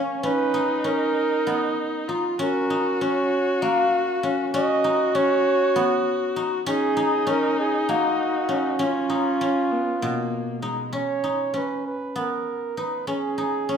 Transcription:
Already playing: guzheng A#3 C#4 D#4, viola C#4
0.23 guzheng C#4, viola D#4, flugelhorn B4
0.54 guzheng D#4
0.84 guzheng C#4, flugelhorn A#4
1.47 guzheng B3
2.08 guzheng D#4, viola F4
2.39 guzheng C#4, viola F#4, flugelhorn A#4
2.70 guzheng D#4
3.01 guzheng C#4, flugelhorn C#5
3.62 guzheng A#3, flugelhorn F5
4.23 guzheng C#4
4.53 guzheng C#4, viola F#4, flugelhorn D#5
4.84 guzheng D#4
5.15 guzheng C#4, flugelhorn C#5
5.76 guzheng B3
6.36 guzheng D#4
6.66 guzheng C#4, viola D#4, flugelhorn G#4
6.97 guzheng D#4
7.27 guzheng C#4, flugelhorn A#4
7.60 flugelhorn G#4
7.89 guzheng A#3, flugelhorn F#4
8.49 guzheng C#4
8.79 guzheng C#4, viola C#4
8.83 flugelhorn F4
9.10 guzheng D#4
9.41 guzheng C#4
9.71 viola B3
10.01 guzheng B2, viola A#3
10.62 viola G#3, guzheng D#4
10.93 guzheng C#4, flugelhorn C#5
11.24 guzheng D#4
11.54 guzheng C#4, flugelhorn B4
11.87 flugelhorn B4
12.16 guzheng B3, flugelhorn A#4
12.77 guzheng D#4, flugelhorn B4
13.07 guzheng C#4, flugelhorn G#4
13.38 guzheng D#4
13.69 guzheng C#4

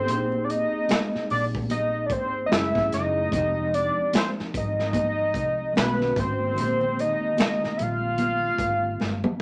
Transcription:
Already playing: tine electric piano B3 C#4, analog synth lead C5
0.03 tine electric piano A#3 G4
0.07 fingered electric bass A#1, tine electric piano C4 D4, closed hi-hat, muted conga
0.12 tine electric piano G#4
0.16 tine electric piano D#4
0.32 muted conga
0.44 analog synth lead D5
0.50 analog synth lead D#5, closed hi-hat
0.89 finger snap, snare, closed hi-hat, muted conga, high conga
1.13 muted fingered electric bass stroke, snare, muted conga
1.30 fingered electric bass A#1, analog synth lead D5, open hi-hat, low conga
1.55 kick
1.70 analog synth lead D#5, closed hi-hat, high conga, low conga
2.06 analog synth lead D5, kick
2.10 fingered electric bass G#1, analog synth lead C5, closed hi-hat
2.46 tine electric piano F#3 A3, analog synth lead D#5
2.51 fingered electric bass F#1, tine electric piano C#4 E4 G#4, analog synth lead E5, finger snap, snare, closed hi-hat
2.75 fingered electric bass G#1, kick, snare, high conga
2.92 fingered electric bass F#1, analog synth lead D#5, snare, closed hi-hat, low conga
3.28 tine electric piano F3 G#3, kick
3.33 fingered electric bass F1, tine electric piano C4 D#4, closed hi-hat, muted conga
3.38 tine electric piano G4
3.74 analog synth lead D5, closed hi-hat
4.13 analog synth lead C5, finger snap, snare, closed hi-hat, high conga
4.39 muted fingered electric bass stroke, snare
4.54 fingered electric bass G#1, analog synth lead D#5, kick, closed hi-hat, low conga
4.79 snare
4.93 kick, closed hi-hat, muted conga, high conga, low conga
5.34 fingered electric bass C2, kick, closed hi-hat
5.73 tine electric piano D#3 A3 B3 C#4, muted conga
5.77 fingered electric bass B1, tine electric piano F4, analog synth lead B4, finger snap, snare, closed hi-hat
5.84 tine electric piano F#4
5.99 snare, high conga
6.16 fingered electric bass G#1, analog synth lead C5, kick, closed hi-hat, low conga
6.53 tine electric piano D#3 G#3 A#3, muted conga
6.58 fingered electric bass A#1, tine electric piano C4 G4, closed hi-hat
6.81 muted conga
6.99 analog synth lead D#5, closed hi-hat
7.37 finger snap, snare, closed hi-hat, muted conga, high conga
7.42 analog synth lead D#5
7.64 muted fingered electric bass stroke, snare
7.77 fingered electric bass A#1, analog synth lead E5, closed hi-hat, low conga
7.82 analog synth lead F5
8.18 closed hi-hat, high conga, low conga
8.58 fingered electric bass G#1, kick, closed hi-hat
9.00 fingered electric bass G1, snare, muted conga
9.24 high tom, muted conga, high conga

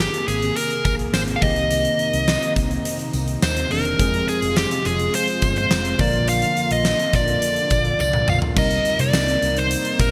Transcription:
Already playing: analog synth pad C3 A#3 G#4, tine electric piano D#3 A#3 C4 G#4
0.00 lead electric guitar G4
0.14 closed hi-hat
0.28 fingered electric bass G#1, lead electric guitar G#4, closed hi-hat, tambourine
0.42 closed hi-hat
0.56 lead electric guitar A#4, closed hi-hat, tambourine
0.70 closed hi-hat
0.85 fingered electric bass A#1, lead electric guitar A#4, kick, closed hi-hat, tambourine
0.99 closed hi-hat
1.14 fingered electric bass G#1, lead electric guitar C5, snare, tambourine
1.28 closed hi-hat
1.36 lead electric guitar F5
1.41 fingered electric bass C2, tine electric piano D#3 A#3 C4 G4, analog synth pad D#4, lead electric guitar D#5, kick, open hi-hat, tambourine
1.56 closed hi-hat
1.71 closed hi-hat, tambourine
1.85 closed hi-hat
1.99 closed hi-hat
2.13 fingered electric bass C2, closed hi-hat
2.28 snare, tambourine
2.43 closed hi-hat
2.56 fingered electric bass C2, kick, closed hi-hat, tambourine
2.71 closed hi-hat
2.85 closed hi-hat
2.99 closed hi-hat
3.13 fingered electric bass C2, closed hi-hat, tambourine
3.28 closed hi-hat
3.42 fingered electric bass D#2, lead electric guitar C5, snare, tambourine
3.57 closed hi-hat
3.70 fingered electric bass E1, tine electric piano D#3 A#3 C4 D4, lead electric guitar A#4, open hi-hat, tambourine
3.85 closed hi-hat
3.98 fingered electric bass F1, tine electric piano F3 G#3 C4 G#4, analog synth pad G#3 F4, kick, closed hi-hat, tambourine
4.14 closed hi-hat
4.28 lead electric guitar G#4, closed hi-hat, tambourine
4.42 fingered electric bass F1, closed hi-hat
4.56 lead electric guitar G4, snare, tambourine
4.71 closed hi-hat
4.85 fingered electric bass F1, lead electric guitar G#4, closed hi-hat, tambourine
5.00 closed hi-hat
5.14 lead electric guitar C5, closed hi-hat
5.28 closed hi-hat
5.42 fingered electric bass G1, kick, closed hi-hat, tambourine
5.56 lead electric guitar C5, closed hi-hat
5.71 fingered electric bass F1, snare, tambourine
5.85 closed hi-hat
5.98 fingered electric bass A#1, analog synth pad D3 A#3, tine electric piano D3 F3 A#3 A#4, lead electric guitar D5, kick, open hi-hat, tambourine
6.13 closed hi-hat
6.28 lead electric guitar F5, closed hi-hat, tambourine
6.42 closed hi-hat
6.57 closed hi-hat, tambourine
6.71 fingered electric bass A#1, lead electric guitar D#5, closed hi-hat
6.85 snare, tambourine
7.00 closed hi-hat
7.13 fingered electric bass A#1, lead electric guitar D5, kick, closed hi-hat, tambourine
7.28 closed hi-hat
7.42 closed hi-hat
7.56 closed hi-hat
7.70 fingered electric bass A#1, kick, closed hi-hat, tambourine
7.85 closed hi-hat
7.99 fingered electric bass C2, lead electric guitar D5, high tom, tambourine
8.13 mid tom
8.28 fingered electric bass B1, lead electric guitar F5, mid tom, tambourine
8.42 floor tom
8.56 fingered electric bass C2, analog synth pad C3 A#3 D#4, tine electric piano G3 C4 D#4 A#4, lead electric guitar D#5, kick, crash, tambourine
8.71 closed hi-hat
8.85 closed hi-hat, tambourine
8.99 fingered electric bass C3, lead electric guitar D5, closed hi-hat
9.14 fingered electric bass C2, snare, tambourine
9.28 closed hi-hat
9.42 fingered electric bass C2, closed hi-hat, tambourine
9.57 lead electric guitar C5, closed hi-hat
9.70 closed hi-hat, tambourine
9.85 closed hi-hat
9.99 fingered electric bass A#1, lead electric guitar A#4, kick, closed hi-hat, tambourine

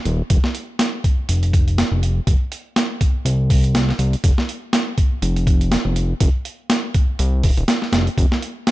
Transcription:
0.05 analog synth bass D#1, closed hi-hat
0.30 analog synth bass F1, kick, closed hi-hat
0.44 snare
0.55 closed hi-hat
0.79 snare, closed hi-hat
1.04 kick, closed hi-hat
1.29 analog synth bass F1, closed hi-hat
1.43 closed hi-hat
1.53 kick, closed hi-hat
1.68 closed hi-hat
1.78 snare, closed hi-hat
1.92 analog synth bass F1
2.03 closed hi-hat
2.27 analog synth bass F1, kick, closed hi-hat
2.52 closed hi-hat
2.76 snare, closed hi-hat
3.01 kick, closed hi-hat
3.25 analog synth bass C2, closed hi-hat
3.50 kick, open hi-hat
3.64 closed hi-hat
3.75 snare, closed hi-hat
3.89 snare
3.99 analog synth bass C2, closed hi-hat
4.13 closed hi-hat
4.24 analog synth bass F1, kick, closed hi-hat
4.38 snare
4.49 closed hi-hat
4.73 snare, closed hi-hat
4.98 kick, closed hi-hat
5.22 analog synth bass F1, closed hi-hat
5.36 closed hi-hat
5.47 kick, closed hi-hat
5.61 closed hi-hat
5.72 snare, closed hi-hat
5.85 analog synth bass F1
5.96 closed hi-hat
6.20 analog synth bass F1, kick, closed hi-hat
6.45 closed hi-hat
6.70 snare, closed hi-hat
6.94 kick, closed hi-hat
7.19 analog synth bass C2, closed hi-hat
7.43 analog synth bass D#1, kick, open hi-hat
7.57 analog synth bass D#1, closed hi-hat
7.68 snare, closed hi-hat
7.82 snare
7.92 analog synth bass F1, snare, closed hi-hat
8.07 closed hi-hat
8.18 analog synth bass F1, kick, closed hi-hat
8.32 snare
8.42 closed hi-hat
8.67 snare, closed hi-hat

